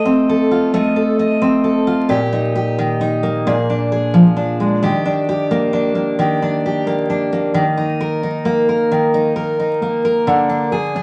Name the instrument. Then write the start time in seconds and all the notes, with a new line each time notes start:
steel-string acoustic guitar
Already playing: A3 A4 D#5
0.05 C4
0.29 A4
0.51 F4
0.74 A3 D#5
0.96 A4
1.19 D#5
1.42 C4
1.64 A4
1.87 F4
2.09 A#2 G4
2.33 D#4
2.55 G4
2.78 D#3
3.01 D#4
3.23 A#3
3.47 A#2 G#4
3.70 D4
3.92 G#4
4.14 F3
4.36 D4
4.60 G#3
4.82 D#3 G4
5.05 D4
5.29 G4
5.51 A#3
5.73 D4
5.95 A#3
6.19 D#3 G4
6.42 D4
6.66 G4
6.87 A#3
7.10 D4
7.33 A#3
7.54 D#3
7.77 D#4
8.01 A#4
8.23 D#4
8.45 A#3
8.69 A#4
8.92 D#3
9.14 D#4
9.36 A#4
9.60 D#4
9.82 A#3
10.05 A#4
10.27 D3
10.49 D4
10.72 G#4
10.96 D4